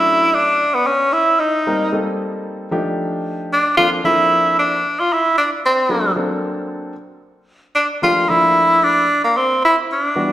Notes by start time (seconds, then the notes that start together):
Already playing: F#3 A3 C#4 D4 E4
0.34 D4
0.74 B3
0.86 C#4
1.13 E4
1.40 D#4
1.67 G3 A#3 C4 D#4 A#4
1.92 G3 A#3 C4 D#4 A4
2.71 F3 A3 D4 D#4 G4
3.53 D4
3.77 F3 A#3 C4 D4 F4 A4
4.04 F3 A#3 C4 D4 E4 A4
4.59 D4
5.00 F4
5.13 E4
5.38 D4
5.66 C4
5.89 F#3 A#3 C4 D4 A4
6.16 F#3 A#3 C4 D4 A4
7.75 D4
8.02 F3 A3 A#3 D4 F4 G4
8.29 F3 A3 A#3 D4 E4
8.83 D4
9.24 A#3
9.37 C4
9.65 E4
9.92 D4
10.16 E3 G3 B3 D4 F#4